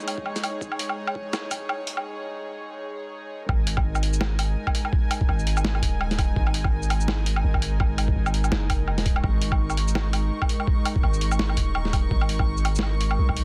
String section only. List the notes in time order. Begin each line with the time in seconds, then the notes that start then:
Already playing: G#3 D#4 G#4 C#5
3.49 G#3 D#4 A#4 G#5
9.23 C#6